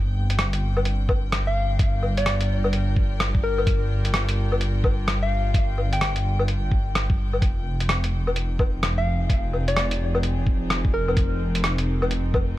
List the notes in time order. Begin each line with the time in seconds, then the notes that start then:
Already playing: G1 G3 C4 G5
0.30 closed hi-hat
0.35 D4 F4, cross-stick, closed hi-hat
0.53 closed hi-hat
0.77 low woodblock
0.85 closed hi-hat
1.09 kick, low woodblock
1.29 A#4, cross-stick, closed hi-hat
1.47 F5
1.79 kick, closed hi-hat
2.03 low woodblock
2.17 D5, closed hi-hat
2.26 cross-stick, closed hi-hat
2.41 closed hi-hat
2.64 low woodblock
2.73 closed hi-hat
2.96 kick
3.20 cross-stick, closed hi-hat
3.35 kick
3.43 A#4
3.58 low woodblock
3.67 kick, closed hi-hat
4.05 closed hi-hat
4.14 cross-stick, closed hi-hat
4.29 closed hi-hat
4.52 low woodblock
4.61 closed hi-hat
4.84 kick, low woodblock
5.08 cross-stick, closed hi-hat
5.23 F5
5.54 kick, closed hi-hat
5.78 low woodblock
5.93 G5, closed hi-hat
6.01 cross-stick, closed hi-hat
6.16 closed hi-hat
6.39 low woodblock
6.48 closed hi-hat
6.72 kick
6.95 cross-stick, closed hi-hat
7.10 kick
7.33 low woodblock
7.42 F1 F3, kick, closed hi-hat
7.58 C4
7.80 closed hi-hat
7.89 cross-stick, closed hi-hat
8.04 D#4, closed hi-hat
8.27 low woodblock
8.36 closed hi-hat
8.59 kick, low woodblock
8.67 G#4
8.83 cross-stick, closed hi-hat
8.98 F5
9.30 kick, closed hi-hat
9.53 low woodblock
9.68 D5, closed hi-hat
9.77 cross-stick, closed hi-hat
9.91 closed hi-hat
10.15 low woodblock
10.23 closed hi-hat
10.47 kick
10.70 cross-stick, closed hi-hat
10.85 kick
10.94 A#4
11.08 low woodblock
11.17 kick, closed hi-hat
11.55 closed hi-hat
11.64 cross-stick, closed hi-hat
11.78 closed hi-hat
12.02 low woodblock
12.11 closed hi-hat
12.20 A#4
12.34 kick, low woodblock